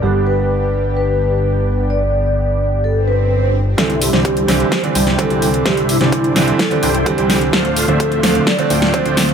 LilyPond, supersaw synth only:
\new Staff \with { instrumentName = "Supersaw synth" } { \time 4/4 \key c \major \tempo 4 = 128 r1 | r1 | <g d' e' c'' e''>8. <g d' e' c'' d''>8. <g d' e' c'' e''>8 r8 <g d' e' c'' g''>8. <g d' e' c'' g''>8 r16 | <g d' e' c'' e''>8. <g d' e' c'' d''>8. <g d' e' c'' e''>8 r8 <g d' e' c'' g''>8. <g d' e' c'' g''>8 r16 |
<a d' f' c'' f''>8. <a d' f' c'' e''>8. <a d' f' c'' f''>8 r8 <a d' f' c'' g''>8. <a d' f' c'' g''>8 r16 | }